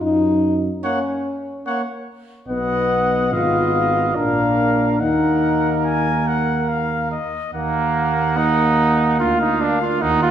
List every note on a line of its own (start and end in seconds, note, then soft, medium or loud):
0.01 0.70 F#2 medium
0.01 0.54 D#4 medium
0.83 1.00 A#3 medium
0.83 1.61 C#4 medium
0.83 0.99 C#5 medium
0.83 1.00 F#5 medium
1.66 1.82 A#3 medium
1.66 1.82 C#5 soft
1.66 1.82 F#5 soft
2.48 3.34 B1 medium
2.48 3.28 B3 medium
2.48 3.28 D#5 medium
2.48 3.35 F#5 medium
3.32 4.15 G#1 medium
3.32 4.14 B3 medium
3.32 4.14 F4 medium
3.32 4.17 D#5 medium
3.32 4.16 F5 medium
4.15 4.98 A#1 medium
4.15 4.98 A#3 medium
4.15 5.01 D4 medium
4.15 5.00 A#4 soft
4.15 5.02 F5 medium
5.00 7.17 D#2 medium
5.00 7.17 A#3 medium
5.00 6.69 D#4 medium
5.00 7.17 A#4 medium
5.00 5.76 F#5 soft
5.85 6.29 G#5 medium
6.27 6.70 F#5 soft
6.69 7.10 F5 medium
7.11 7.52 D#5 soft
7.53 9.21 D#2 medium
7.53 8.39 A#3 medium
7.53 10.31 A#3 medium
7.53 10.03 A#3 medium
7.53 9.21 F#5 medium
8.37 9.19 D#4 medium
9.20 10.03 D2 medium
9.20 9.40 F4 medium
9.20 10.03 F5 medium
9.41 9.62 D#4 medium
9.60 9.80 D4 medium
9.81 10.03 F4 medium
10.01 10.31 D#2 medium
10.01 10.31 D#3 medium
10.01 10.22 D#4 medium
10.01 10.31 F#5 medium
10.22 10.31 F4 medium